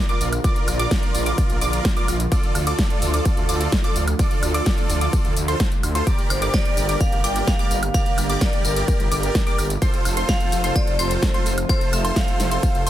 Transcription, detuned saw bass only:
0, 0, Header, 1, 2, 480
1, 0, Start_track
1, 0, Tempo, 468750
1, 454, Time_signature, 4, 2, 24, 8
1, 13209, End_track
2, 0, Start_track
2, 0, Title_t, "Detuned saw bass"
2, 0, Program_c, 0, 39
2, 214, Note_on_c, 0, 34, 92
2, 403, Note_off_c, 0, 34, 0
2, 694, Note_on_c, 0, 34, 99
2, 883, Note_off_c, 0, 34, 0
2, 1173, Note_on_c, 0, 34, 93
2, 1363, Note_off_c, 0, 34, 0
2, 1533, Note_on_c, 0, 34, 83
2, 1628, Note_off_c, 0, 34, 0
2, 1653, Note_on_c, 0, 34, 106
2, 1842, Note_off_c, 0, 34, 0
2, 2133, Note_on_c, 0, 34, 92
2, 2323, Note_off_c, 0, 34, 0
2, 2613, Note_on_c, 0, 38, 100
2, 2802, Note_off_c, 0, 38, 0
2, 3093, Note_on_c, 0, 38, 91
2, 3283, Note_off_c, 0, 38, 0
2, 3453, Note_on_c, 0, 38, 82
2, 3548, Note_off_c, 0, 38, 0
2, 3573, Note_on_c, 0, 38, 107
2, 3763, Note_off_c, 0, 38, 0
2, 4053, Note_on_c, 0, 38, 92
2, 4243, Note_off_c, 0, 38, 0
2, 4534, Note_on_c, 0, 38, 98
2, 4723, Note_off_c, 0, 38, 0
2, 5013, Note_on_c, 0, 38, 92
2, 5203, Note_off_c, 0, 38, 0
2, 5374, Note_on_c, 0, 38, 83
2, 5468, Note_off_c, 0, 38, 0
2, 5495, Note_on_c, 0, 38, 106
2, 5684, Note_off_c, 0, 38, 0
2, 5975, Note_on_c, 0, 38, 95
2, 6163, Note_off_c, 0, 38, 0
2, 6454, Note_on_c, 0, 31, 99
2, 6643, Note_off_c, 0, 31, 0
2, 6934, Note_on_c, 0, 31, 94
2, 7123, Note_off_c, 0, 31, 0
2, 7294, Note_on_c, 0, 31, 82
2, 7388, Note_off_c, 0, 31, 0
2, 7414, Note_on_c, 0, 31, 106
2, 7603, Note_off_c, 0, 31, 0
2, 7895, Note_on_c, 0, 31, 93
2, 8083, Note_off_c, 0, 31, 0
2, 8374, Note_on_c, 0, 31, 99
2, 8563, Note_off_c, 0, 31, 0
2, 8854, Note_on_c, 0, 31, 91
2, 9043, Note_off_c, 0, 31, 0
2, 9214, Note_on_c, 0, 31, 83
2, 9309, Note_off_c, 0, 31, 0
2, 9334, Note_on_c, 0, 31, 107
2, 9523, Note_off_c, 0, 31, 0
2, 9814, Note_on_c, 0, 31, 92
2, 10003, Note_off_c, 0, 31, 0
2, 10294, Note_on_c, 0, 29, 101
2, 10483, Note_off_c, 0, 29, 0
2, 10774, Note_on_c, 0, 29, 92
2, 10963, Note_off_c, 0, 29, 0
2, 11134, Note_on_c, 0, 29, 84
2, 11229, Note_off_c, 0, 29, 0
2, 11254, Note_on_c, 0, 29, 107
2, 11443, Note_off_c, 0, 29, 0
2, 11734, Note_on_c, 0, 29, 95
2, 11923, Note_off_c, 0, 29, 0
2, 12214, Note_on_c, 0, 29, 100
2, 12403, Note_off_c, 0, 29, 0
2, 12694, Note_on_c, 0, 29, 91
2, 12883, Note_off_c, 0, 29, 0
2, 13054, Note_on_c, 0, 29, 83
2, 13148, Note_off_c, 0, 29, 0
2, 13174, Note_on_c, 0, 29, 106
2, 13209, Note_off_c, 0, 29, 0
2, 13209, End_track
0, 0, End_of_file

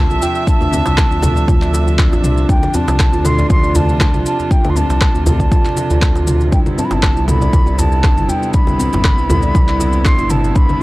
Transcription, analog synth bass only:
0, 0, Header, 1, 2, 480
1, 0, Start_track
1, 0, Tempo, 504202
1, 452, Time_signature, 4, 2, 24, 8
1, 10307, End_track
2, 0, Start_track
2, 0, Title_t, "Analog synth bass"
2, 0, Program_c, 0, 38
2, 99, Note_on_c, 0, 36, 92
2, 191, Note_off_c, 0, 36, 0
2, 580, Note_on_c, 0, 38, 95
2, 774, Note_off_c, 0, 38, 0
2, 817, Note_on_c, 0, 36, 102
2, 1013, Note_off_c, 0, 36, 0
2, 1057, Note_on_c, 0, 38, 100
2, 1379, Note_off_c, 0, 38, 0
2, 1410, Note_on_c, 0, 38, 98
2, 1982, Note_off_c, 0, 38, 0
2, 2021, Note_on_c, 0, 33, 106
2, 2131, Note_on_c, 0, 36, 101
2, 2145, Note_off_c, 0, 33, 0
2, 2332, Note_off_c, 0, 36, 0
2, 2372, Note_on_c, 0, 38, 97
2, 2477, Note_off_c, 0, 38, 0
2, 2742, Note_on_c, 0, 36, 105
2, 2936, Note_off_c, 0, 36, 0
2, 2981, Note_on_c, 0, 38, 102
2, 3301, Note_off_c, 0, 38, 0
2, 3333, Note_on_c, 0, 38, 102
2, 3904, Note_off_c, 0, 38, 0
2, 3940, Note_on_c, 0, 36, 98
2, 4032, Note_off_c, 0, 36, 0
2, 4419, Note_on_c, 0, 38, 94
2, 4614, Note_off_c, 0, 38, 0
2, 4659, Note_on_c, 0, 36, 100
2, 4854, Note_off_c, 0, 36, 0
2, 4901, Note_on_c, 0, 38, 100
2, 5221, Note_off_c, 0, 38, 0
2, 5622, Note_on_c, 0, 38, 93
2, 6181, Note_off_c, 0, 38, 0
2, 6212, Note_on_c, 0, 36, 101
2, 6317, Note_off_c, 0, 36, 0
2, 6579, Note_on_c, 0, 31, 97
2, 6774, Note_off_c, 0, 31, 0
2, 6819, Note_on_c, 0, 36, 105
2, 7139, Note_off_c, 0, 36, 0
2, 7171, Note_on_c, 0, 36, 102
2, 7743, Note_off_c, 0, 36, 0
2, 7782, Note_on_c, 0, 31, 93
2, 7873, Note_off_c, 0, 31, 0
2, 8261, Note_on_c, 0, 36, 94
2, 8455, Note_off_c, 0, 36, 0
2, 8502, Note_on_c, 0, 31, 103
2, 8695, Note_off_c, 0, 31, 0
2, 8741, Note_on_c, 0, 36, 100
2, 9061, Note_off_c, 0, 36, 0
2, 9090, Note_on_c, 0, 36, 92
2, 9663, Note_off_c, 0, 36, 0
2, 9700, Note_on_c, 0, 31, 109
2, 9792, Note_off_c, 0, 31, 0
2, 9811, Note_on_c, 0, 31, 96
2, 10012, Note_off_c, 0, 31, 0
2, 10050, Note_on_c, 0, 36, 100
2, 10156, Note_off_c, 0, 36, 0
2, 10307, End_track
0, 0, End_of_file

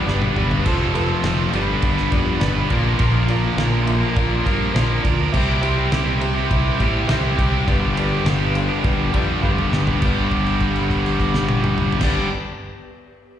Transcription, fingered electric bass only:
0, 0, Header, 1, 2, 480
1, 0, Start_track
1, 0, Tempo, 584226
1, 547, Time_signature, 4, 2, 24, 8
1, 11006, End_track
2, 0, Start_track
2, 0, Title_t, "Fingered electric bass"
2, 0, Program_c, 0, 33
2, 55, Note_on_c, 0, 31, 85
2, 242, Note_off_c, 0, 31, 0
2, 295, Note_on_c, 0, 31, 83
2, 482, Note_off_c, 0, 31, 0
2, 541, Note_on_c, 0, 29, 87
2, 908, Note_off_c, 0, 29, 0
2, 1012, Note_on_c, 0, 29, 87
2, 1200, Note_off_c, 0, 29, 0
2, 1257, Note_on_c, 0, 31, 84
2, 1443, Note_off_c, 0, 31, 0
2, 1501, Note_on_c, 0, 31, 93
2, 1685, Note_off_c, 0, 31, 0
2, 1744, Note_on_c, 0, 41, 84
2, 1927, Note_off_c, 0, 41, 0
2, 1985, Note_on_c, 0, 31, 89
2, 2168, Note_off_c, 0, 31, 0
2, 2225, Note_on_c, 0, 34, 91
2, 2408, Note_off_c, 0, 34, 0
2, 2463, Note_on_c, 0, 34, 93
2, 2829, Note_off_c, 0, 34, 0
2, 2936, Note_on_c, 0, 34, 89
2, 3305, Note_off_c, 0, 34, 0
2, 3423, Note_on_c, 0, 34, 94
2, 3607, Note_off_c, 0, 34, 0
2, 3661, Note_on_c, 0, 43, 86
2, 3845, Note_off_c, 0, 43, 0
2, 3900, Note_on_c, 0, 34, 91
2, 4084, Note_off_c, 0, 34, 0
2, 4142, Note_on_c, 0, 38, 92
2, 4325, Note_off_c, 0, 38, 0
2, 4387, Note_on_c, 0, 36, 93
2, 4751, Note_off_c, 0, 36, 0
2, 4868, Note_on_c, 0, 36, 92
2, 5232, Note_off_c, 0, 36, 0
2, 5348, Note_on_c, 0, 36, 95
2, 5529, Note_off_c, 0, 36, 0
2, 5585, Note_on_c, 0, 45, 86
2, 5767, Note_off_c, 0, 45, 0
2, 5824, Note_on_c, 0, 36, 86
2, 6007, Note_off_c, 0, 36, 0
2, 6066, Note_on_c, 0, 36, 92
2, 6248, Note_off_c, 0, 36, 0
2, 6306, Note_on_c, 0, 31, 90
2, 6671, Note_off_c, 0, 31, 0
2, 6775, Note_on_c, 0, 31, 90
2, 7144, Note_off_c, 0, 31, 0
2, 7264, Note_on_c, 0, 31, 89
2, 7447, Note_off_c, 0, 31, 0
2, 7510, Note_on_c, 0, 41, 83
2, 7691, Note_off_c, 0, 41, 0
2, 7749, Note_on_c, 0, 31, 83
2, 7931, Note_off_c, 0, 31, 0
2, 7981, Note_on_c, 0, 31, 88
2, 8166, Note_off_c, 0, 31, 0
2, 8234, Note_on_c, 0, 31, 91
2, 9774, Note_off_c, 0, 31, 0
2, 9871, Note_on_c, 0, 31, 92
2, 10068, Note_off_c, 0, 31, 0
2, 11006, End_track
0, 0, End_of_file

